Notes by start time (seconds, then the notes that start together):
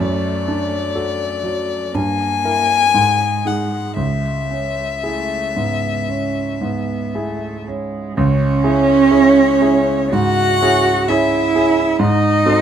Already playing: A3
0.00 F#2 D5
0.48 D4
0.95 F#4 A4
1.43 F#3
1.94 G2 A#3 G#5
2.45 E4 A#4
2.94 G#2 G#3
3.45 D#4 G#4 F#5
3.96 C#2 E5
4.51 C#4
5.03 A3 E4 G#4
5.56 G#2 B3
6.09 C#4
6.61 G#2 B3
7.15 A3 E4 G#4
7.67 G#3 C#4
8.17 C#2 C#4 C#5
8.64 C#4 E4 G#4
9.10 C#4 E4 G#4
9.61 C#4 E4 G#4
10.12 G#2 F#4 F#5
10.62 C#4 E4 G#4
11.08 C#4 E4 G#4 E5
11.55 C#4 E4 G#4
11.99 G#2 D#4 D#5
12.45 C4 F#4 A4